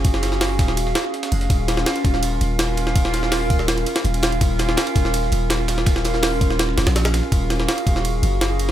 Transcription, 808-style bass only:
\new Staff \with { instrumentName = "808-style bass" } { \clef bass \time 4/4 \key ees \minor \tempo 4 = 165 ges,,4. ees,,4 r4 f,,8 | ees,,4 r8 ees,,4 ees,,4.~ | ees,,4. ees,,4 r8 ees,,4 | ees,,4 r8 ees,,4 ees,,4.~ |
ees,,4. ees,,4 ees,,16 bes,,4 r16 | ees,,4 r8 ees,,4 ges,,4. | }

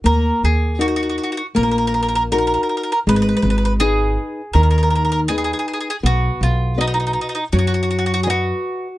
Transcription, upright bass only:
\new Staff \with { instrumentName = "Upright bass" } { \clef bass \time 4/4 \key ees \minor \tempo 4 = 80 ees,8 ees,4. bes,,2 | aes,,8 aes,,4. ees,2 | b,,8 b,,4. fis,2 | }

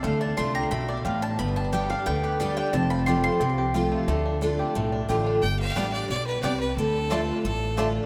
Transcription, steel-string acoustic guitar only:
\new Staff \with { instrumentName = "Steel-string acoustic guitar" } { \time 4/4 \key d \dorian \tempo 4 = 178 << { r4 <d a d' f'>4 r2 | r4 <g b d' g'>8 <d' g'>8 r4 <g b d' g'>4 | r4 <f a c' f'>4 r4 <f a c' f'>4 | r4 <d a d' f'>4 r4 <d a d' f'>4 |
r4 <g b d' g'>4 r2 | r4 <d a d' f'>4 r4 <d a d' f'>4 | } \\ { d2 b,4 a,4 | g,2 d2 | f,2 c2 | d2 a,2 |
g,2 b,4 c4 | d2 a,2 | } >> }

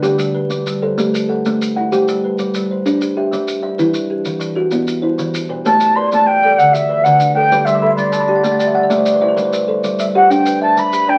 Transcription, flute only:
\new Staff \with { instrumentName = "Flute" } { \time 12/8 \key a \dorian \tempo 4. = 129 r1. | r1. | r1. | a''4 c'''8 a''8 g''4 fis''8 e''4 fis''4 g''8~ |
g''8 e''4 d''2. r4. | r2 e''8 fis''8 g''4 a''8 b''4 g''8 | }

